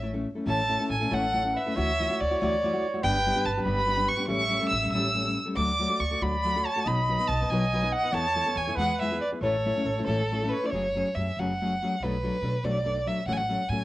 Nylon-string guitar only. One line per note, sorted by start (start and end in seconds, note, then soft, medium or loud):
0.02 0.14 A3 medium
0.02 0.13 C#4 medium
0.02 0.13 E4 medium
0.02 0.12 A4 medium
0.14 0.28 A3 soft
0.14 0.27 C#4 soft
0.14 0.27 E4 soft
0.14 0.27 A4 medium
0.35 0.46 A3 soft
0.35 0.46 C#4 soft
0.35 0.46 E4 soft
0.35 0.47 A4 soft
0.46 0.60 A2 medium
0.46 0.60 E3 medium
0.46 0.60 A3 medium
0.46 0.60 C#4 medium
0.46 0.60 E4 medium
0.46 0.61 A4 medium
0.68 0.79 A3 medium
0.68 0.79 C#4 medium
0.68 0.79 E4 medium
0.68 0.78 A4 medium
0.79 0.93 A3 soft
0.79 0.93 C#4 soft
0.79 0.93 E4 soft
0.79 0.93 A4 medium
1.00 1.10 A3 soft
1.00 1.10 C#4 soft
1.00 1.10 E4 soft
1.00 1.10 A4 medium
1.10 1.25 A2 medium
1.10 1.25 E3 medium
1.10 1.25 A3 medium
1.10 1.25 C#4 medium
1.10 1.25 E4 medium
1.10 1.25 A4 medium
1.33 1.44 A3 medium
1.33 1.44 C#4 medium
1.33 1.43 E4 medium
1.33 1.43 A4 medium
1.44 1.58 A3 medium
1.44 1.58 C#4 soft
1.44 1.58 E4 soft
1.44 1.58 A4 medium
1.66 1.75 A3 soft
1.66 1.76 C#4 soft
1.66 1.76 E4 medium
1.66 1.77 A4 medium
1.76 1.90 D3 medium
1.76 1.90 E3 medium
1.76 1.90 A3 medium
1.76 1.91 E4 medium
1.76 1.91 F#4 medium
1.99 2.10 E3 medium
1.99 2.10 A3 medium
1.99 2.09 E4 medium
1.99 2.08 F#4 medium
2.10 2.23 A3 soft
2.10 2.22 E4 medium
2.10 2.22 F#4 medium
2.31 2.40 A3 soft
2.31 2.41 E4 soft
2.31 2.41 F#4 medium
2.41 2.54 D3 medium
2.41 2.54 E3 medium
2.41 2.54 A3 loud
2.41 2.54 E4 medium
2.41 2.55 F#4 medium
2.63 2.73 E3 medium
2.63 2.73 A3 medium
2.63 2.73 E4 medium
2.63 2.72 F#4 medium
2.73 2.86 A3 soft
2.73 2.86 E4 medium
2.73 2.85 F#4 medium
2.94 3.03 A3 soft
2.94 3.04 E4 medium
2.94 3.03 F#4 medium
3.03 3.16 G2 medium
3.03 3.16 D3 medium
3.03 3.16 G3 medium
3.03 3.16 B3 loud
3.03 3.16 D4 loud
3.03 3.16 G4 loud
3.26 3.35 G3 medium
3.26 3.35 B3 medium
3.26 3.35 D4 medium
3.26 3.34 G4 medium
3.36 3.48 G3 soft
3.36 3.48 B3 medium
3.36 3.48 D4 medium
3.36 3.48 G4 medium
3.57 3.65 G3 soft
3.57 3.65 B3 medium
3.57 3.64 D4 medium
3.57 3.65 G4 medium
3.65 3.78 G2 medium
3.65 3.78 D3 medium
3.65 3.79 G3 medium
3.65 3.79 B3 medium
3.65 3.79 D4 medium
3.65 3.79 G4 loud
3.86 3.97 G3 medium
3.86 3.96 B3 medium
3.86 3.96 D4 medium
3.86 3.94 G4 medium
3.96 4.10 G3 soft
3.96 4.10 B3 soft
3.96 4.10 D4 medium
3.96 4.09 G4 medium
4.17 4.27 G3 soft
4.17 4.28 B3 medium
4.17 4.29 D4 medium
4.17 4.28 G4 soft
4.28 4.41 A2 medium
4.28 4.41 E3 medium
4.28 4.41 G3 medium
4.28 4.42 A3 loud
4.28 4.42 C#4 medium
4.28 4.42 A4 medium
4.48 4.60 G3 medium
4.48 4.60 A3 medium
4.48 4.59 C#4 medium
4.48 4.58 A4 medium
4.59 4.74 G3 soft
4.59 4.74 A3 soft
4.59 4.73 C#4 medium
4.59 4.73 A4 medium
4.82 4.93 G3 soft
4.82 4.93 A3 soft
4.82 4.93 C#4 soft
4.82 4.92 A4 soft
4.94 5.06 A2 medium
4.94 5.06 E3 medium
4.94 5.07 G3 medium
4.94 5.06 A3 medium
4.94 5.07 C#4 medium
4.94 5.07 A4 medium
5.14 5.25 G3 medium
5.14 5.25 A3 medium
5.14 5.25 C#4 medium
5.14 5.24 A4 medium
5.25 5.38 G3 soft
5.25 5.38 A3 soft
5.25 5.38 C#4 soft
5.25 5.38 A4 medium
5.45 5.57 G3 soft
5.45 5.56 A3 soft
5.45 5.57 C#4 soft
5.45 5.56 A4 soft
5.57 5.70 D3 medium
5.57 5.70 F#3 medium
5.57 5.70 A3 medium
5.57 5.70 F#4 medium
5.57 5.70 A4 medium
5.79 5.89 F#3 medium
5.79 5.90 A3 medium
5.79 5.89 F#4 medium
5.79 5.88 A4 medium
5.90 6.03 A3 soft
5.90 6.03 F#4 medium
5.90 6.02 A4 medium
6.11 6.21 A3 soft
6.11 6.21 F#4 soft
6.11 6.22 A4 medium
6.22 6.35 D3 medium
6.22 6.35 F#3 medium
6.22 6.35 A3 medium
6.22 6.35 F#4 medium
6.22 6.35 A4 medium
6.44 6.54 F#3 medium
6.44 6.55 A3 medium
6.44 6.55 F#4 medium
6.44 6.55 A4 medium
6.56 6.68 A3 soft
6.56 6.68 F#4 soft
6.56 6.68 A4 medium
6.76 6.86 A3 soft
6.76 6.86 F#4 soft
6.76 6.86 A4 medium
6.85 6.98 B2 medium
6.85 6.99 F#3 medium
6.85 6.99 B3 medium
6.85 6.99 D#4 medium
6.85 6.99 B4 medium
7.08 7.18 F#3 medium
7.08 7.18 B3 medium
7.08 7.19 D#4 medium
7.08 7.17 B4 medium
7.18 7.31 B3 soft
7.18 7.31 D#4 soft
7.18 7.31 B4 medium
7.41 7.51 B3 soft
7.41 7.51 D#4 soft
7.41 7.50 B4 medium
7.52 7.63 B2 medium
7.52 7.63 F#3 medium
7.52 7.64 B3 medium
7.52 7.64 D#4 medium
7.52 7.64 B4 loud
7.73 7.82 F#3 medium
7.73 7.82 B3 medium
7.73 7.82 D#4 medium
7.73 7.81 B4 medium
7.83 7.95 B3 medium
7.83 7.95 D#4 medium
7.83 7.94 B4 medium
8.03 8.11 B3 soft
8.03 8.12 D#4 soft
8.03 8.13 B4 medium
8.11 8.25 E3 medium
8.11 8.25 B3 loud
8.11 8.25 E4 medium
8.11 8.26 A4 loud
8.35 8.45 E3 medium
8.35 8.45 B3 medium
8.35 8.46 E4 medium
8.35 8.45 A4 medium
8.46 8.59 B3 medium
8.46 8.58 E4 soft
8.46 8.58 A4 medium
8.67 8.77 B3 soft
8.67 8.78 E4 medium
8.67 8.77 A4 medium
8.78 8.90 E3 medium
8.78 8.91 G#3 medium
8.78 8.90 B3 medium
8.78 8.91 E4 medium
8.78 8.91 G#4 medium
9.01 9.10 G#3 medium
9.01 9.10 B3 medium
9.01 9.11 E4 medium
9.01 9.11 G#4 medium
9.12 9.24 B3 soft
9.12 9.23 E4 medium
9.12 9.23 G#4 medium
9.32 9.43 B3 soft
9.32 9.42 E4 soft
9.32 9.42 G#4 soft
9.42 9.55 A2 medium
9.42 9.55 E3 medium
9.42 9.55 A3 medium
9.42 9.55 C#4 medium
9.42 9.55 E4 medium
9.42 9.55 A4 medium
9.65 9.75 A3 medium
9.65 9.75 C#4 medium
9.65 9.75 E4 medium
9.65 9.75 A4 medium
9.76 9.88 A3 soft
9.76 9.89 C#4 medium
9.76 9.89 E4 soft
9.76 9.88 A4 medium
9.98 10.07 A3 medium
9.98 10.08 C#4 soft
9.98 10.08 E4 medium
9.98 10.08 A4 medium
10.08 10.21 A2 medium
10.08 10.21 E3 medium
10.08 10.21 A3 medium
10.08 10.21 C#4 medium
10.08 10.21 E4 medium
10.08 10.21 A4 medium
10.32 10.41 A3 medium
10.32 10.41 C#4 medium
10.32 10.42 E4 medium
10.32 10.41 A4 medium
10.42 10.55 A3 soft
10.42 10.55 C#4 medium
10.42 10.54 E4 medium
10.42 10.54 A4 medium
10.63 10.72 A3 soft
10.63 10.73 C#4 soft
10.63 10.74 E4 medium
10.63 10.73 A4 soft
10.73 10.86 F#2 medium
10.73 10.86 C#3 medium
10.73 10.86 F#3 medium
10.73 10.86 A3 medium
10.73 10.87 C#4 medium
10.73 10.87 G#4 medium
10.95 11.08 F#3 medium
10.95 11.08 A3 medium
10.95 11.08 C#4 medium
10.95 11.09 G#4 medium
11.17 11.29 F#3 soft
11.17 11.30 A3 medium
11.17 11.30 C#4 medium
11.17 11.30 G#4 medium
11.39 11.51 F#2 medium
11.39 11.52 C#3 medium
11.39 11.52 F#3 medium
11.39 11.51 A3 medium
11.39 11.52 C#4 medium
11.39 11.52 G#4 medium
11.61 11.73 F#3 soft
11.61 11.73 A3 medium
11.61 11.74 C#4 soft
11.61 11.74 G#4 medium
11.82 11.94 F#3 medium
11.82 11.94 A3 medium
11.82 11.94 C#4 medium
11.82 11.95 G#4 medium
12.03 12.15 B2 medium
12.03 12.16 F#3 medium
12.03 12.16 A3 medium
12.03 12.16 D4 medium
12.03 12.16 A4 medium
12.23 12.35 F#3 medium
12.23 12.36 A3 medium
12.23 12.36 D4 medium
12.23 12.36 A4 medium
12.42 12.55 F#3 soft
12.42 12.56 A3 medium
12.42 12.56 D4 medium
12.42 12.56 A4 medium
12.64 12.77 B2 medium
12.64 12.77 F#3 medium
12.64 12.77 A3 medium
12.64 12.77 D4 medium
12.64 12.77 A4 medium
12.84 12.97 F#3 medium
12.84 12.98 A3 soft
12.84 12.98 D4 medium
12.84 12.98 A4 medium
13.06 13.19 F#3 medium
13.06 13.19 A3 medium
13.06 13.19 D4 medium
13.06 13.20 A4 medium
13.28 13.41 A2 medium
13.28 13.41 E3 medium
13.28 13.41 F#3 medium
13.28 13.41 A3 medium
13.28 13.41 C#4 medium
13.28 13.41 A4 medium
13.49 13.61 F#3 medium
13.49 13.62 A3 medium
13.49 13.62 C#4 medium
13.49 13.63 A4 medium
13.71 13.83 F#3 soft
13.71 13.84 A3 medium
13.71 13.84 C#4 medium
13.71 13.84 A4 medium